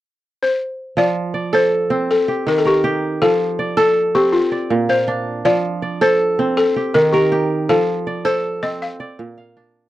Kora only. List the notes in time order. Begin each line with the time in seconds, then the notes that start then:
0.97 F3
1.34 D5
1.53 A4
1.90 C4
2.28 G4
2.47 D#3
2.65 A#4
2.84 G4
3.22 F3
3.59 D5
3.77 A4
4.15 C4
4.52 D5
4.70 A#2
4.89 F5
5.08 D4
5.45 F3
5.82 D5
6.01 A4
6.39 C4
6.76 G4
6.95 D#3
7.14 A#4
7.32 G4
7.69 F3
8.07 D5
8.25 A4
8.63 C4
9.00 D5
9.19 A#2
9.38 F5
9.57 D4